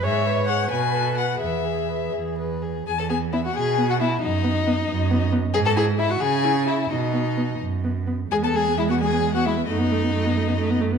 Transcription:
<<
  \new Staff \with { instrumentName = "Violin" } { \time 6/8 \key e \major \tempo 4. = 88 e''4 fis''8 gis''4 fis''8 | e''4. r4. | gis''16 a''16 gis''8 e''16 fis''16 gis''8. fis''16 e''8 | dis''2~ dis''8 r8 |
gis''16 a''16 gis''8 e''16 fis''16 gis''4 e''8 | dis''4. r4. | gis''16 a''16 gis''8 e''16 fis''16 gis''8. fis''16 e''8 | dis''2~ dis''8 r8 | }
  \new Staff \with { instrumentName = "Violin" } { \time 6/8 \key e \major gis'8 b'8 gis'8 b'8 a'8 b'8 | b'8 gis'8 b'8 gis'8 b'8 gis'8 | gis'16 a'16 gis'8 e'16 fis'16 gis'8. fis'16 e'8 | dis'2~ dis'8 r8 |
gis'16 a'16 gis'8 e'16 fis'16 gis'4 e'8 | dis'4. r4. | gis'16 a'16 gis'8 e'16 fis'16 gis'8. fis'16 e'8 | dis'2~ dis'8 r8 | }
  \new Staff \with { instrumentName = "Viola" } { \time 6/8 \key e \major cis''4. b'4. | gis'2~ gis'16 r8. | r8 b8 b8 r8 b8 b8 | r8 b8 b8 r8 b8 b8 |
r8 e'8 e'8 r8 e'8 e'8 | r8 b8 b8 r8 b8 b8 | gis16 b16 gis16 b16 gis16 b16 gis16 b16 gis16 b16 gis16 b16 | a16 b16 a16 b16 a16 b16 a16 b16 a16 b16 a16 b16 | }
  \new Staff \with { instrumentName = "Cello" } { \clef bass \time 6/8 \key e \major gis,4. b,4. | e,4. e,4. | e,4. b,4. | fis,4. fis,4. |
gis,4. cis4. | b,4. fis,4. | e,2. | fis,2. | }
>>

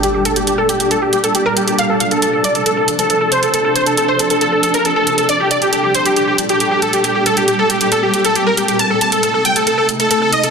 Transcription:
<<
  \new Staff \with { instrumentName = "Supersaw synth" } { \time 4/4 \key g \minor \tempo 4 = 137 g'16 g'16 a'16 g'16 g'16 a'16 g'16 g'16 a'16 g'16 g'16 a'16 g'16 bes'16 g'16 g'16 | f''16 a'16 f''16 a'16 a'16 a'16 d''16 a'16 a'16 a'16 r16 a'16 a'16 a'16 c''16 a'16 | a'16 a'16 c''16 a'16 a'16 c''16 a'16 a'16 a'16 a'16 a'16 bes'16 a'16 a'16 a'16 a'16 | d''16 g'16 d''16 g'16 g'16 g'16 c''16 g'16 g'16 g'16 r16 g'16 g'16 g'16 a'16 g'16 |
g'16 g'16 a'16 g'16 g'16 a'16 g'16 g'16 a'16 g'16 g'16 a'16 g'16 bes'16 g'16 g'16 | a''16 a'16 a''16 a'16 a'16 a'16 g''16 a'16 a'16 a'16 r16 a'16 a'16 a'16 ees''16 a'16 | }
  \new Staff \with { instrumentName = "Synth pluck" } { \time 4/4 \key g \minor g'16 g'16 a'16 g'16 g'16 a'16 g'16 g'16 a'16 g'16 g'16 a'16 g'16 bes'16 g'16 g'16 | f''16 a'16 f''16 a'16 a'16 a'16 d''16 a'16 a'16 a'16 r16 a'16 a'16 a'16 c''16 a'16 | a'16 a'16 c''16 a'16 a'16 c''16 a'16 a'16 a'16 a'16 a'16 bes'16 a'16 a'16 a'16 a'16 | d''16 g'16 d''16 g'16 g'16 g'16 c''16 g'16 g'16 g'16 r16 g'16 g'16 g'16 a'16 g'16 |
g'16 g'16 a'16 g'16 g'16 a'16 g'16 g'16 a'16 g'16 g'16 a'16 g'16 bes'16 g'16 g'16 | a''16 a'16 a''16 a'16 a'16 a'16 g''16 a'16 a'16 a'16 r16 a'16 a'16 a'16 ees''16 a'16 | }
  \new DrumStaff \with { instrumentName = "Drums" } \drummode { \time 4/4 hh8 hh16 hh16 hh8 hh16 hh16 hh8 hh16 hh16 hh8 hh16 hh16 | hh8 hh16 hh16 hh8 hh16 hh16 hh8 hh16 hh16 hh8 hh16 hh16 | hh8 hh16 hh16 hh8 hh16 hh16 hh8 hh16 hh16 hh8 hh16 hh16 | hh8 hh16 hh16 hh8 hh16 hh16 hh8 hh16 hh16 hh8 hh16 hh16 |
hh8 hh16 hh16 hh8 hh16 hh16 hh8 hh16 hh16 hh8 hh16 hh16 | hh8 hh16 hh16 hh8 hh16 hh16 hh8 hh16 hh16 hh8 hh16 hh16 | }
>>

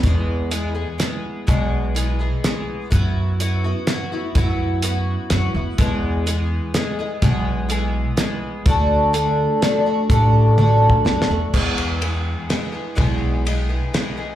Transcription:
<<
  \new Staff \with { instrumentName = "Twelve-string acoustic guitar" } { \time 3/4 \key e \mixolydian \tempo 4 = 125 <e, b, e gis b gis'>4 <e gis b gis'>8 <e gis b gis'>8 <e gis b gis'>4 | <e, b, e gis b gis'>4 <e gis b gis'>8 <e gis b gis'>8 <e gis b gis'>4 | <fis b e' fis'>4 <fis b e' fis'>8 <b e' fis'>8 <fis b e' fis'>8 <b e' fis'>8 | <fis b e' fis'>4 <fis b e' fis'>4 <fis b e' fis'>8 <b e' fis'>8 |
<e, b, e gis b gis'>4 <e gis b gis'>4 <e gis b gis'>8 <e gis b gis'>8 | <e, b, e gis b gis'>4 <e gis b gis'>4 <e gis b gis'>4 | <d a d' fis'>4 <d a d' fis'>4 <d a d' fis'>8 <a d' fis'>8 | <d a d' fis'>4 <d a d' fis'>4 <d a d' fis'>8 <a d' fis'>8 |
<e, b, e gis b gis'>4 <e gis b gis'>4 <e gis b gis'>8 <e gis b gis'>8 | <e, b, e gis b gis'>4 <e gis b gis'>8 <e gis b gis'>8 <e gis b gis'>8 <e gis b gis'>8 | }
  \new Staff \with { instrumentName = "Upright bass" } { \clef bass \time 3/4 \key e \mixolydian e,2 r4 | b,,2 r4 | fis,2 r4 | fis,2 fis,8 e,8 |
e,2 r4 | b,,2 r4 | d,2 r4 | a,,2 fis,8 e,8 |
e,2 r4 | b,,2 r4 | }
  \new DrumStaff \with { instrumentName = "Drums" } \drummode { \time 3/4 <hh bd>4 hh4 <hh sn>4 | <hh bd>4 hh4 <hh sn>4 | <hh bd>4 hh4 <hh sn>4 | <hh bd>4 hh4 <hh sn>4 |
<hh bd>4 hh4 <hh sn>4 | <hh bd>4 hh4 <hh sn>4 | <hh bd>4 hh4 <hh sn>4 | <hh bd>4 \tuplet 3/2 { tommh8 r8 bd8 sn8 sn8 r8 } |
<cymc bd>8 cymr8 cymr4 <cymr sn>4 | <bd cymr>4 cymr4 <cymr sn>4 | }
>>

